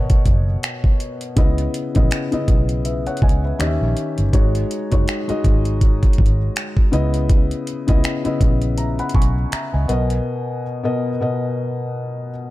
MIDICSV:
0, 0, Header, 1, 5, 480
1, 0, Start_track
1, 0, Tempo, 740741
1, 887, Time_signature, 4, 2, 24, 8
1, 8102, End_track
2, 0, Start_track
2, 0, Title_t, "Felt piano"
2, 0, Program_c, 0, 0
2, 0, Control_c, 0, 64, 127
2, 0, Note_on_c, 0, 47, 78
2, 0, Note_on_c, 0, 59, 74
2, 0, Note_on_c, 0, 70, 73
2, 0, Note_on_c, 0, 73, 93
2, 0, Note_on_c, 0, 75, 90
2, 287, Note_off_c, 0, 47, 0
2, 288, Note_off_c, 0, 59, 0
2, 291, Note_off_c, 0, 70, 0
2, 293, Note_off_c, 0, 73, 0
2, 882, Note_on_c, 0, 49, 83
2, 887, Note_on_c, 0, 59, 75
2, 890, Note_on_c, 0, 64, 78
2, 894, Note_off_c, 0, 75, 0
2, 894, Note_on_c, 0, 75, 89
2, 896, Control_c, 0, 64, 0
2, 1005, Control_c, 0, 64, 127
2, 1153, Note_off_c, 0, 49, 0
2, 1155, Note_off_c, 0, 59, 0
2, 1157, Note_off_c, 0, 64, 0
2, 1159, Note_off_c, 0, 75, 0
2, 1262, Note_on_c, 0, 49, 78
2, 1265, Note_on_c, 0, 59, 73
2, 1269, Note_on_c, 0, 64, 73
2, 1274, Note_on_c, 0, 75, 89
2, 1430, Note_off_c, 0, 49, 0
2, 1432, Note_off_c, 0, 59, 0
2, 1434, Note_off_c, 0, 64, 0
2, 1436, Note_off_c, 0, 75, 0
2, 1501, Note_on_c, 0, 49, 82
2, 1505, Note_on_c, 0, 59, 72
2, 1509, Note_on_c, 0, 64, 74
2, 1513, Note_on_c, 0, 75, 92
2, 1848, Note_on_c, 0, 76, 63
2, 1851, Note_off_c, 0, 75, 0
2, 1852, Note_on_c, 0, 71, 51
2, 1980, Note_off_c, 0, 76, 0
2, 1982, Note_off_c, 0, 71, 0
2, 1988, Note_on_c, 0, 78, 71
2, 1992, Note_on_c, 0, 73, 58
2, 2083, Note_off_c, 0, 78, 0
2, 2085, Note_off_c, 0, 73, 0
2, 2089, Note_on_c, 0, 80, 68
2, 2093, Note_on_c, 0, 75, 56
2, 2207, Note_off_c, 0, 49, 0
2, 2209, Note_off_c, 0, 59, 0
2, 2211, Note_off_c, 0, 64, 0
2, 2220, Note_off_c, 0, 80, 0
2, 2222, Note_off_c, 0, 75, 0
2, 2229, Note_on_c, 0, 76, 60
2, 2233, Note_on_c, 0, 71, 53
2, 2324, Note_on_c, 0, 51, 84
2, 2326, Note_on_c, 0, 61, 83
2, 2331, Note_on_c, 0, 67, 76
2, 2334, Control_c, 0, 64, 0
2, 2335, Note_on_c, 0, 75, 81
2, 2368, Note_off_c, 0, 76, 0
2, 2377, Note_on_c, 0, 76, 96
2, 2380, Note_off_c, 0, 75, 0
2, 2458, Note_off_c, 0, 71, 0
2, 2466, Control_c, 0, 64, 127
2, 2725, Note_off_c, 0, 51, 0
2, 2726, Note_off_c, 0, 61, 0
2, 2728, Note_off_c, 0, 67, 0
2, 2752, Note_off_c, 0, 76, 0
2, 2804, Note_on_c, 0, 56, 84
2, 2807, Note_on_c, 0, 63, 80
2, 2811, Note_on_c, 0, 66, 76
2, 2815, Note_on_c, 0, 73, 90
2, 2816, Control_c, 0, 64, 0
2, 2941, Control_c, 0, 64, 127
2, 3074, Note_off_c, 0, 56, 0
2, 3076, Note_off_c, 0, 63, 0
2, 3077, Note_off_c, 0, 66, 0
2, 3080, Note_off_c, 0, 73, 0
2, 3182, Note_on_c, 0, 56, 81
2, 3186, Note_on_c, 0, 63, 75
2, 3190, Note_on_c, 0, 66, 73
2, 3194, Note_on_c, 0, 73, 91
2, 3350, Note_off_c, 0, 56, 0
2, 3352, Note_off_c, 0, 63, 0
2, 3354, Note_off_c, 0, 66, 0
2, 3356, Note_off_c, 0, 73, 0
2, 3422, Note_on_c, 0, 56, 84
2, 3426, Note_on_c, 0, 63, 80
2, 3430, Note_on_c, 0, 66, 79
2, 3434, Note_on_c, 0, 75, 95
2, 4127, Note_off_c, 0, 56, 0
2, 4129, Note_off_c, 0, 63, 0
2, 4131, Note_off_c, 0, 66, 0
2, 4133, Note_off_c, 0, 75, 0
2, 4482, Note_on_c, 0, 49, 90
2, 4486, Note_on_c, 0, 59, 82
2, 4490, Note_on_c, 0, 64, 77
2, 4493, Note_on_c, 0, 75, 100
2, 4496, Control_c, 0, 64, 0
2, 4601, Control_c, 0, 64, 127
2, 4964, Note_off_c, 0, 49, 0
2, 4966, Note_off_c, 0, 59, 0
2, 4968, Note_off_c, 0, 64, 0
2, 4970, Note_off_c, 0, 75, 0
2, 5101, Note_on_c, 0, 49, 82
2, 5105, Note_on_c, 0, 59, 75
2, 5109, Note_on_c, 0, 64, 79
2, 5113, Note_on_c, 0, 75, 94
2, 5270, Note_off_c, 0, 49, 0
2, 5272, Note_off_c, 0, 59, 0
2, 5274, Note_off_c, 0, 64, 0
2, 5276, Note_off_c, 0, 75, 0
2, 5340, Note_on_c, 0, 49, 85
2, 5344, Note_on_c, 0, 59, 76
2, 5348, Note_on_c, 0, 64, 78
2, 5353, Note_on_c, 0, 75, 89
2, 5688, Note_on_c, 0, 82, 61
2, 5690, Note_off_c, 0, 75, 0
2, 5691, Note_on_c, 0, 76, 50
2, 5820, Note_off_c, 0, 82, 0
2, 5822, Note_off_c, 0, 76, 0
2, 5827, Note_on_c, 0, 83, 68
2, 5830, Note_on_c, 0, 78, 59
2, 5922, Note_off_c, 0, 83, 0
2, 5924, Note_off_c, 0, 78, 0
2, 5929, Note_on_c, 0, 85, 66
2, 5933, Note_on_c, 0, 80, 58
2, 6046, Note_off_c, 0, 49, 0
2, 6048, Note_off_c, 0, 59, 0
2, 6051, Note_off_c, 0, 64, 0
2, 6156, Note_off_c, 0, 85, 0
2, 6158, Note_off_c, 0, 80, 0
2, 6169, Note_on_c, 0, 82, 72
2, 6174, Note_on_c, 0, 76, 61
2, 6301, Note_off_c, 0, 82, 0
2, 6303, Note_off_c, 0, 76, 0
2, 6308, Note_on_c, 0, 80, 61
2, 6311, Note_on_c, 0, 75, 52
2, 6402, Note_on_c, 0, 47, 82
2, 6404, Note_off_c, 0, 75, 0
2, 6406, Note_on_c, 0, 59, 79
2, 6409, Note_on_c, 0, 70, 77
2, 6413, Note_on_c, 0, 75, 91
2, 6415, Control_c, 0, 64, 0
2, 6533, Control_c, 0, 64, 127
2, 6535, Note_off_c, 0, 80, 0
2, 6885, Note_off_c, 0, 47, 0
2, 6887, Note_off_c, 0, 59, 0
2, 6888, Note_off_c, 0, 70, 0
2, 6890, Note_off_c, 0, 75, 0
2, 7020, Note_on_c, 0, 47, 82
2, 7024, Note_on_c, 0, 59, 75
2, 7028, Note_on_c, 0, 70, 77
2, 7032, Note_on_c, 0, 75, 93
2, 7189, Note_off_c, 0, 47, 0
2, 7192, Note_off_c, 0, 59, 0
2, 7194, Note_off_c, 0, 70, 0
2, 7195, Note_off_c, 0, 75, 0
2, 7261, Note_on_c, 0, 47, 80
2, 7264, Note_on_c, 0, 59, 74
2, 7268, Note_on_c, 0, 70, 76
2, 7273, Note_on_c, 0, 75, 91
2, 7967, Note_off_c, 0, 47, 0
2, 7969, Note_off_c, 0, 59, 0
2, 7970, Note_off_c, 0, 70, 0
2, 7973, Note_off_c, 0, 75, 0
2, 8102, End_track
3, 0, Start_track
3, 0, Title_t, "Fingered electric bass"
3, 0, Program_c, 1, 33
3, 0, Note_on_c, 1, 32, 79
3, 70, Note_off_c, 1, 32, 0
3, 168, Note_on_c, 1, 30, 92
3, 359, Note_off_c, 1, 30, 0
3, 888, Note_on_c, 1, 37, 92
3, 1079, Note_off_c, 1, 37, 0
3, 1271, Note_on_c, 1, 34, 86
3, 1350, Note_off_c, 1, 34, 0
3, 1609, Note_on_c, 1, 35, 73
3, 1990, Note_off_c, 1, 35, 0
3, 2088, Note_on_c, 1, 37, 83
3, 2279, Note_off_c, 1, 37, 0
3, 2331, Note_on_c, 1, 39, 90
3, 2440, Note_off_c, 1, 39, 0
3, 2471, Note_on_c, 1, 34, 81
3, 2549, Note_off_c, 1, 34, 0
3, 2711, Note_on_c, 1, 31, 89
3, 2789, Note_off_c, 1, 31, 0
3, 3192, Note_on_c, 1, 30, 78
3, 3270, Note_off_c, 1, 30, 0
3, 3529, Note_on_c, 1, 32, 83
3, 3910, Note_off_c, 1, 32, 0
3, 4008, Note_on_c, 1, 32, 99
3, 4199, Note_off_c, 1, 32, 0
3, 4491, Note_on_c, 1, 37, 89
3, 4872, Note_off_c, 1, 37, 0
3, 5113, Note_on_c, 1, 37, 88
3, 5190, Note_off_c, 1, 37, 0
3, 5449, Note_on_c, 1, 34, 82
3, 5830, Note_off_c, 1, 34, 0
3, 5928, Note_on_c, 1, 35, 90
3, 6119, Note_off_c, 1, 35, 0
3, 6311, Note_on_c, 1, 37, 91
3, 6390, Note_off_c, 1, 37, 0
3, 6412, Note_on_c, 1, 35, 96
3, 6601, Note_off_c, 1, 35, 0
3, 8102, End_track
4, 0, Start_track
4, 0, Title_t, "Muted fingered electric bass strokes"
4, 1511, Note_on_c, 9, 29, 46
4, 1575, Note_off_c, 9, 29, 0
4, 3431, Note_on_c, 9, 29, 48
4, 3496, Note_off_c, 9, 29, 0
4, 5352, Note_on_c, 9, 29, 45
4, 5416, Note_off_c, 9, 29, 0
4, 6173, Note_on_c, 9, 29, 44
4, 6238, Note_off_c, 9, 29, 0
4, 8102, End_track
5, 0, Start_track
5, 0, Title_t, "Drums"
5, 63, Note_on_c, 9, 42, 53
5, 65, Note_on_c, 9, 36, 89
5, 128, Note_off_c, 9, 42, 0
5, 129, Note_off_c, 9, 36, 0
5, 166, Note_on_c, 9, 36, 89
5, 166, Note_on_c, 9, 42, 52
5, 231, Note_off_c, 9, 36, 0
5, 231, Note_off_c, 9, 42, 0
5, 410, Note_on_c, 9, 42, 69
5, 415, Note_on_c, 9, 26, 108
5, 474, Note_off_c, 9, 42, 0
5, 480, Note_off_c, 9, 26, 0
5, 544, Note_on_c, 9, 36, 83
5, 608, Note_off_c, 9, 36, 0
5, 649, Note_on_c, 9, 42, 59
5, 714, Note_off_c, 9, 42, 0
5, 784, Note_on_c, 9, 42, 53
5, 849, Note_off_c, 9, 42, 0
5, 885, Note_on_c, 9, 42, 76
5, 886, Note_on_c, 9, 36, 116
5, 950, Note_off_c, 9, 42, 0
5, 951, Note_off_c, 9, 36, 0
5, 1025, Note_on_c, 9, 42, 51
5, 1090, Note_off_c, 9, 42, 0
5, 1128, Note_on_c, 9, 42, 66
5, 1193, Note_off_c, 9, 42, 0
5, 1263, Note_on_c, 9, 42, 45
5, 1270, Note_on_c, 9, 36, 91
5, 1328, Note_off_c, 9, 42, 0
5, 1334, Note_off_c, 9, 36, 0
5, 1367, Note_on_c, 9, 42, 72
5, 1375, Note_on_c, 9, 26, 108
5, 1432, Note_off_c, 9, 42, 0
5, 1440, Note_off_c, 9, 26, 0
5, 1504, Note_on_c, 9, 42, 38
5, 1569, Note_off_c, 9, 42, 0
5, 1607, Note_on_c, 9, 36, 87
5, 1607, Note_on_c, 9, 42, 59
5, 1671, Note_off_c, 9, 36, 0
5, 1672, Note_off_c, 9, 42, 0
5, 1743, Note_on_c, 9, 42, 44
5, 1807, Note_off_c, 9, 42, 0
5, 1847, Note_on_c, 9, 42, 69
5, 1911, Note_off_c, 9, 42, 0
5, 1986, Note_on_c, 9, 42, 34
5, 2051, Note_off_c, 9, 42, 0
5, 2054, Note_on_c, 9, 42, 47
5, 2086, Note_on_c, 9, 36, 89
5, 2118, Note_off_c, 9, 42, 0
5, 2134, Note_on_c, 9, 42, 53
5, 2151, Note_off_c, 9, 36, 0
5, 2198, Note_off_c, 9, 42, 0
5, 2331, Note_on_c, 9, 42, 64
5, 2336, Note_on_c, 9, 26, 104
5, 2396, Note_off_c, 9, 42, 0
5, 2401, Note_off_c, 9, 26, 0
5, 2570, Note_on_c, 9, 42, 60
5, 2635, Note_off_c, 9, 42, 0
5, 2707, Note_on_c, 9, 42, 51
5, 2772, Note_off_c, 9, 42, 0
5, 2808, Note_on_c, 9, 36, 116
5, 2809, Note_on_c, 9, 42, 72
5, 2873, Note_off_c, 9, 36, 0
5, 2874, Note_off_c, 9, 42, 0
5, 2948, Note_on_c, 9, 42, 49
5, 3013, Note_off_c, 9, 42, 0
5, 3051, Note_on_c, 9, 42, 69
5, 3116, Note_off_c, 9, 42, 0
5, 3185, Note_on_c, 9, 42, 47
5, 3191, Note_on_c, 9, 36, 90
5, 3250, Note_off_c, 9, 42, 0
5, 3255, Note_off_c, 9, 36, 0
5, 3290, Note_on_c, 9, 42, 66
5, 3297, Note_on_c, 9, 26, 109
5, 3354, Note_off_c, 9, 42, 0
5, 3362, Note_off_c, 9, 26, 0
5, 3427, Note_on_c, 9, 42, 39
5, 3492, Note_off_c, 9, 42, 0
5, 3527, Note_on_c, 9, 36, 86
5, 3529, Note_on_c, 9, 42, 56
5, 3592, Note_off_c, 9, 36, 0
5, 3594, Note_off_c, 9, 42, 0
5, 3663, Note_on_c, 9, 42, 45
5, 3728, Note_off_c, 9, 42, 0
5, 3767, Note_on_c, 9, 36, 86
5, 3767, Note_on_c, 9, 42, 69
5, 3832, Note_off_c, 9, 36, 0
5, 3832, Note_off_c, 9, 42, 0
5, 3905, Note_on_c, 9, 36, 91
5, 3906, Note_on_c, 9, 42, 34
5, 3970, Note_off_c, 9, 36, 0
5, 3971, Note_off_c, 9, 42, 0
5, 3974, Note_on_c, 9, 42, 43
5, 4007, Note_on_c, 9, 36, 90
5, 4039, Note_off_c, 9, 42, 0
5, 4055, Note_on_c, 9, 42, 52
5, 4072, Note_off_c, 9, 36, 0
5, 4120, Note_off_c, 9, 42, 0
5, 4251, Note_on_c, 9, 42, 69
5, 4256, Note_on_c, 9, 26, 106
5, 4315, Note_off_c, 9, 42, 0
5, 4321, Note_off_c, 9, 26, 0
5, 4384, Note_on_c, 9, 36, 87
5, 4449, Note_off_c, 9, 36, 0
5, 4490, Note_on_c, 9, 42, 59
5, 4555, Note_off_c, 9, 42, 0
5, 4625, Note_on_c, 9, 42, 53
5, 4690, Note_off_c, 9, 42, 0
5, 4727, Note_on_c, 9, 36, 119
5, 4727, Note_on_c, 9, 42, 71
5, 4792, Note_off_c, 9, 36, 0
5, 4792, Note_off_c, 9, 42, 0
5, 4868, Note_on_c, 9, 42, 48
5, 4933, Note_off_c, 9, 42, 0
5, 4971, Note_on_c, 9, 42, 66
5, 5036, Note_off_c, 9, 42, 0
5, 5105, Note_on_c, 9, 42, 48
5, 5111, Note_on_c, 9, 36, 93
5, 5170, Note_off_c, 9, 42, 0
5, 5176, Note_off_c, 9, 36, 0
5, 5209, Note_on_c, 9, 42, 69
5, 5217, Note_on_c, 9, 26, 111
5, 5274, Note_off_c, 9, 42, 0
5, 5282, Note_off_c, 9, 26, 0
5, 5346, Note_on_c, 9, 42, 40
5, 5411, Note_off_c, 9, 42, 0
5, 5447, Note_on_c, 9, 36, 92
5, 5449, Note_on_c, 9, 42, 58
5, 5512, Note_off_c, 9, 36, 0
5, 5514, Note_off_c, 9, 42, 0
5, 5583, Note_on_c, 9, 42, 45
5, 5648, Note_off_c, 9, 42, 0
5, 5687, Note_on_c, 9, 42, 69
5, 5751, Note_off_c, 9, 42, 0
5, 5826, Note_on_c, 9, 42, 35
5, 5891, Note_off_c, 9, 42, 0
5, 5893, Note_on_c, 9, 42, 46
5, 5926, Note_on_c, 9, 36, 88
5, 5958, Note_off_c, 9, 42, 0
5, 5973, Note_on_c, 9, 42, 54
5, 5991, Note_off_c, 9, 36, 0
5, 6038, Note_off_c, 9, 42, 0
5, 6170, Note_on_c, 9, 42, 69
5, 6175, Note_on_c, 9, 26, 107
5, 6235, Note_off_c, 9, 42, 0
5, 6240, Note_off_c, 9, 26, 0
5, 6409, Note_on_c, 9, 42, 60
5, 6474, Note_off_c, 9, 42, 0
5, 6546, Note_on_c, 9, 42, 51
5, 6611, Note_off_c, 9, 42, 0
5, 8102, End_track
0, 0, End_of_file